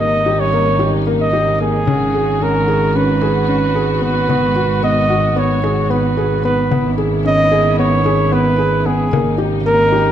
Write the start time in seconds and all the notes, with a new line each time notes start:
Already playing: G#1 C#3 G3 D#4
0.00 A#3 D#5
0.26 G4
0.40 C#5
0.53 A#3
0.79 G4, frame drum
1.07 A#3
1.21 D#5
1.33 G4
1.60 A#3 G#4
1.87 G#1 G#3 C#4 F#4, frame drum
2.14 G#4
2.41 C#4 A#4
2.68 G#4, frame drum
2.96 C#4 B4
3.22 G#4, frame drum
3.48 C#4
3.75 G#4, frame drum
4.02 B3 B4
4.29 G#1 B2 B3, frame drum
4.56 F#4
4.83 B3 D#5
5.10 F#4
5.36 B3 C#5
5.64 G#4, frame drum
5.90 B3 B4
6.17 G#4
6.45 B3 B4, frame drum
6.71 G#1 C#3 B3 E4, frame drum
6.98 G#4
7.25 C#4 D#5
7.52 G#4
7.79 B3 C#5
8.05 G#4, frame drum
8.32 B3 B4
8.58 G#4
8.86 B3 G#4, frame drum
9.12 G#1 A#3 D#4, frame drum
9.38 G4
9.66 A#3 A#4
9.92 G4